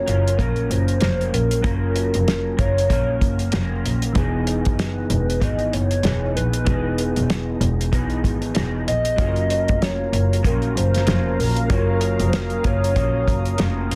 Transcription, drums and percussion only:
0.08 closed hi-hat medium
0.28 closed hi-hat medium
0.39 kick medium
0.39 closed hi-hat medium
0.56 closed hi-hat soft
0.71 closed hi-hat medium
0.88 closed hi-hat soft
1.01 snare loud
1.01 closed hi-hat medium
1.21 closed hi-hat soft
1.34 closed hi-hat medium
1.51 closed hi-hat medium
1.64 kick loud
1.64 closed hi-hat medium
1.96 closed hi-hat medium
2.14 closed hi-hat medium
2.28 snare loud
2.28 closed hi-hat medium
2.59 kick medium
2.59 closed hi-hat medium
2.78 closed hi-hat soft
2.90 kick loud
2.90 closed hi-hat medium
3.21 kick medium
3.21 closed hi-hat medium
3.39 closed hi-hat soft
3.52 snare loud
3.52 closed hi-hat medium
3.86 closed hi-hat medium
4.02 closed hi-hat medium
4.15 kick loud
4.15 closed hi-hat medium
4.47 closed hi-hat medium
4.65 kick medium
4.65 closed hi-hat soft
4.79 snare loud
4.79 closed hi-hat medium
5.10 closed hi-hat medium
5.30 closed hi-hat medium
5.42 kick loud
5.42 closed hi-hat medium
5.59 closed hi-hat soft
5.73 closed hi-hat medium
5.91 closed hi-hat soft
6.03 snare loud
6.03 closed hi-hat medium
6.37 closed hi-hat medium
6.53 closed hi-hat medium
6.67 kick loud
6.67 closed hi-hat medium
6.98 closed hi-hat medium
7.16 closed hi-hat medium
7.30 snare loud
7.30 closed hi-hat medium
7.61 closed hi-hat medium
7.81 closed hi-hat medium
7.93 kick medium
7.93 closed hi-hat medium
8.10 closed hi-hat soft
8.24 kick medium
8.24 closed hi-hat medium
8.42 closed hi-hat soft
8.55 snare loud
8.55 closed hi-hat medium
8.88 closed hi-hat medium
9.05 closed hi-hat medium
9.18 kick loud
9.18 closed hi-hat medium
9.36 closed hi-hat soft
9.50 closed hi-hat medium
9.68 kick loud
9.68 closed hi-hat medium
9.82 snare loud
9.82 closed hi-hat medium
10.13 closed hi-hat medium
10.33 closed hi-hat medium
10.44 kick loud
10.44 closed hi-hat medium
10.62 closed hi-hat soft
10.77 closed hi-hat medium
10.94 snare soft
10.94 closed hi-hat soft
11.07 snare loud
11.07 closed hi-hat medium
11.40 open hi-hat medium
11.57 closed hi-hat medium
11.70 kick loud
11.70 closed hi-hat medium
12.01 closed hi-hat medium
12.20 closed hi-hat soft
12.33 snare loud
12.33 closed hi-hat medium
12.50 closed hi-hat soft
12.64 kick medium
12.64 closed hi-hat medium
12.84 closed hi-hat medium
12.96 kick loud
12.96 closed hi-hat medium
13.28 kick medium
13.28 closed hi-hat medium
13.45 closed hi-hat soft
13.58 snare loud
13.58 closed hi-hat medium
13.91 closed hi-hat medium

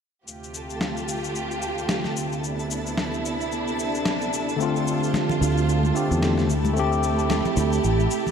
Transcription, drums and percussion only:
0.28 shaker soft
0.44 shaker soft
0.54 shaker medium
0.70 shaker soft
0.81 snare medium
0.81 shaker soft
0.97 shaker soft
1.09 shaker medium
1.24 shaker soft
1.36 shaker soft
1.51 shaker soft
1.62 shaker medium
1.78 shaker soft
1.89 snare medium
1.89 shaker soft
2.04 snare soft
2.04 shaker soft
2.17 shaker medium
2.32 shaker soft
2.44 shaker soft
2.59 shaker soft
2.71 shaker medium
2.87 shaker soft
2.98 snare medium
2.98 shaker soft
3.14 shaker soft
3.25 shaker medium
3.41 shaker soft
3.52 shaker soft
3.68 shaker soft
3.79 shaker medium
3.95 shaker soft
4.05 snare medium
4.05 shaker soft
4.22 shaker soft
4.33 shaker medium
4.49 shaker soft
4.61 shaker soft
4.76 shaker soft
4.88 shaker medium
5.04 shaker soft
5.14 snare loud
5.14 high conga medium
5.14 shaker soft
5.29 low conga medium
5.29 shaker soft
5.43 shaker medium
5.58 shaker soft
5.69 shaker soft
5.83 high conga medium
5.83 shaker soft
5.96 shaker medium
6.12 shaker soft
6.23 snare medium
6.23 shaker soft
6.38 snare soft
6.38 shaker soft
6.50 shaker medium
6.65 high conga medium
6.65 shaker soft
6.77 shaker soft
6.92 shaker soft
7.03 shaker medium
7.19 shaker soft
7.30 snare medium
7.30 high conga medium
7.30 shaker soft
7.45 low conga medium
7.45 shaker soft
7.57 shaker medium
7.73 shaker soft
7.84 shaker soft
8.00 high conga medium
8.00 shaker soft
8.11 shaker medium
8.27 low conga medium
8.27 shaker soft

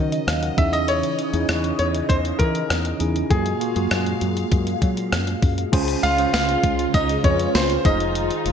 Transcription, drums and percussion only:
0.12 closed hi-hat medium
0.28 cross-stick medium
0.28 closed hi-hat medium
0.43 closed hi-hat soft
0.58 kick loud
0.58 closed hi-hat medium
0.73 closed hi-hat soft
0.88 closed hi-hat medium
1.03 closed hi-hat medium
1.19 closed hi-hat medium
1.34 closed hi-hat soft
1.49 cross-stick loud
1.49 closed hi-hat medium
1.64 closed hi-hat soft
1.79 closed hi-hat medium
1.95 closed hi-hat medium
2.10 kick medium
2.10 closed hi-hat medium
2.25 closed hi-hat soft
2.40 kick medium
2.40 closed hi-hat medium
2.55 closed hi-hat medium
2.70 cross-stick medium
2.70 closed hi-hat medium
2.85 closed hi-hat soft
3.00 closed hi-hat medium
3.16 closed hi-hat soft
3.31 kick loud
3.31 closed hi-hat medium
3.46 closed hi-hat medium
3.61 closed hi-hat medium
3.76 closed hi-hat soft
3.91 cross-stick loud
3.91 closed hi-hat medium
4.06 closed hi-hat soft
4.21 closed hi-hat medium
4.37 closed hi-hat medium
4.52 kick medium
4.52 closed hi-hat medium
4.67 closed hi-hat soft
4.82 kick medium
4.82 closed hi-hat medium
4.97 closed hi-hat medium
5.12 cross-stick medium
5.12 closed hi-hat medium
5.27 closed hi-hat soft
5.42 kick medium
5.42 open hi-hat medium
5.58 closed hi-hat soft
5.73 kick loud
5.73 closed hi-hat medium
5.73 crash loud
5.88 closed hi-hat medium
6.03 closed hi-hat medium
6.18 closed hi-hat soft
6.34 snare loud
6.34 closed hi-hat medium
6.34 tambourine medium
6.49 closed hi-hat medium
6.64 kick medium
6.64 closed hi-hat medium
6.79 closed hi-hat medium
6.94 kick medium
6.94 closed hi-hat medium
7.09 closed hi-hat medium
7.24 kick medium
7.24 closed hi-hat medium
7.40 closed hi-hat medium
7.55 snare loud
7.55 closed hi-hat medium
7.55 tambourine medium
7.70 closed hi-hat medium
7.85 kick loud
7.85 closed hi-hat medium
8.00 closed hi-hat medium
8.15 closed hi-hat medium
8.31 closed hi-hat medium
8.46 closed hi-hat medium

